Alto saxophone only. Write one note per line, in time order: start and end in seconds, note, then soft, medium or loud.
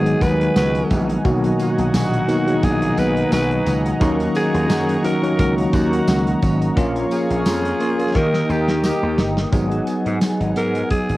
0.00 0.24 G#4 loud
0.22 0.56 B4 loud
0.57 1.06 B4 loud
1.61 2.66 F#4 loud
2.64 3.00 G#4 loud
2.99 3.33 B4 loud
3.33 3.82 B4 loud
4.37 5.01 G#4 loud
5.05 5.37 A#4 loud
5.40 5.55 A#4 loud
5.74 6.38 F#4 medium
7.12 8.17 G#4 loud
8.16 8.52 A#4 loud
8.51 8.84 G4 loud
8.85 9.34 G4 medium
10.57 10.89 A#4 loud
10.91 11.17 G#4 loud